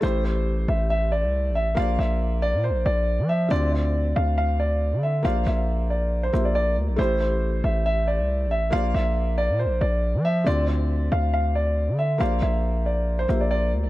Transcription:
X:1
M:4/4
L:1/16
Q:1/4=138
K:Bblyd
V:1 name="Grand piano"
c2 c4 e2 e2 d4 e2 | f2 e4 d2 c2 d4 e2 | d2 d4 f2 f2 d4 e2 | f2 e4 d3 c2 d d2 z2 |
c2 c4 e2 e2 d4 e2 | f2 e4 d2 c2 d4 e2 | d2 d4 f2 f2 d4 e2 | f2 e4 d3 c2 d d2 z2 |]
V:2 name="Felt piano"
[A,EGc]16 | [B,Fcd]16 | [D,CFd]16 | [B,Fcd]8- [B,Fcd]2 [B,Fce]6 |
[A,EGc]16 | [B,Fcd]16 | [D,CFd]16 | [B,Fcd]8- [B,Fcd]2 [B,Fce]6 |]
V:3 name="808-style bass" clef=bass
A,,,6 A,,,4- A,,, C,,2- C,,/2 A,,,2- A,,,/2 | B,,,2 B,,,4- B,,, B,,3/2 B,,,3/2 B,,,3 F,3 | D,,6 D,,6- D,, D,3 | B,,,2 B,,,8 B,,,4 D,, B,,, |
A,,,6 A,,,4- A,,, C,,2- C,,/2 A,,,2- A,,,/2 | B,,,2 B,,,4- B,,, B,,3/2 B,,,3/2 B,,,3 F,3 | D,,6 D,,6- D,, D,3 | B,,,2 B,,,8 B,,,4 D,, B,,, |]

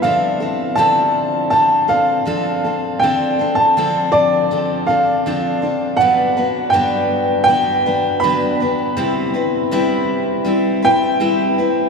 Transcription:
X:1
M:4/4
L:1/16
Q:1/4=80
K:Dmix
V:1 name="Upright piano"
=f4 a4 a2 f6 | g3 a3 d4 =f6 | f4 g4 g4 b3 z | z8 z2 g6 |]
V:2 name="Steel-string acoustic guitar"
[D,=F,CDA]2 [CDA]2 [D,F,CDA]4 [F,CDA]2 [CDA]2 [D,F,CDA]2 [CDA]2 | [D,=F,CDA]2 [CDA]2 [D,F,CDA]4 [F,CDA]2 [CDA]2 [D,F,CDA]2 [CDA]2 | [G,,D,F,B,DB]2 [F,B,DB]2 [G,,D,F,B,DB]4 [F,B,DB]2 [F,B,DB]2 [G,,D,F,B,DB]2 [F,B,DB]2 | [C,G,CEB]2 [CEB]2 [C,G,CEB]4 [G,CEB]2 [CEB]2 [C,G,CEB]2 [CEB]2 |]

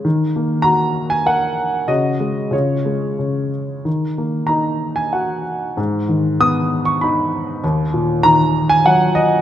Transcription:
X:1
M:3/4
L:1/16
Q:1/4=96
K:D#m
V:1 name="Grand piano"
z4 a3 g f4 | [Fd]4 [Ec]6 z2 | z4 a3 g f4 | z4 d'3 c' b4 |
z4 a3 g f2 d2 |]
V:2 name="Grand piano" clef=bass
D,2 A,2 F4 A4 | C,2 G,2 C,2 G,2 C,4 | D,2 A,2 D4 F4 | G,,2 D,2 B,4 D4 |
D,,2 A,,2 D,4 F,4 |]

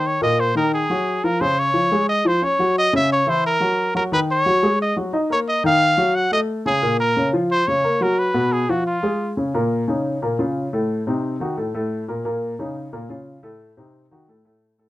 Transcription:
X:1
M:4/4
L:1/8
Q:1/4=177
K:Bbm
V:1 name="Trumpet"
d e c B A3 B | c d3 e c d2 | e _f d c B3 B | =B ^c3 ^d z2 c |
e f3 g e z A- | A B2 z c d2 B | =B2 A ^F =F3 z | z8 |
z8 | z8 | z8 |]
V:2 name="Upright piano"
[E,E] [B,,B,]2 [E,E]2 [G,G]2 [F,F] | [D,D]2 [F,F] [A,A]2 [F,F] [Dd] [G,G]- | [G,G] [D,D]2 [_F,_F]2 [G,G]2 [G,G] | [^D,^D]2 [^F,^F] [^G,^G]2 [F,F] [D^d] [^A,^A]- |
[^A,^A] [E,E]2 [G,G]2 [=A,=A]2 [D,D] | [B,,B,]2 [D,D] [F,F]2 [D,D] [B,B] [G,G]- | [G,G] [=B,,=B,]2 [F,F]2 [A,A]2 [D,D] | [B,,B,B]2 [D,DE]2 [B,,B,B] [D,DF]2 [=A,,=A,=A]- |
[=A,,=A,=A] [C,CE]2 [E,E^F] [A,,A,A] [A,,A,A]2 [B,,B,B] | [B,,B,B]2 [D,DE]2 [B,,B,B] [D,DF]2 [=A,,=A,=A]- | [=A,,=A,=A] [C,CE]2 [E,E^F] [A,,A,A] [A,,A,A]2 [A,,A,A] |]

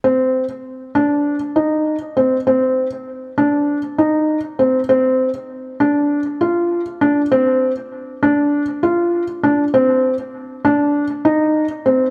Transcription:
X:1
M:4/4
L:1/8
Q:1/4=99
K:Cm
V:1 name="Felt piano"
C2 z D2 E2 C | C2 z D2 E2 C | C2 z D2 F2 D | C2 z D2 F2 D |
C2 z D2 E2 C |]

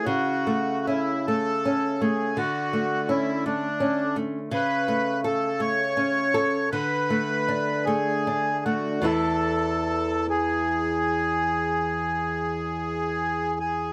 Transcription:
X:1
M:12/8
L:1/8
Q:3/8=52
K:A
V:1 name="Bandoneon"
F2 E A2 G F2 E D2 z | B2 A c3 B3 G2 F | A3 G8 G |]
V:2 name="Nylon-string guitar"
C, A, C A, C A, D, A, C A, C A, | C, A, A A, C A D, A, D A, D A, | [E,,E,E]12 |]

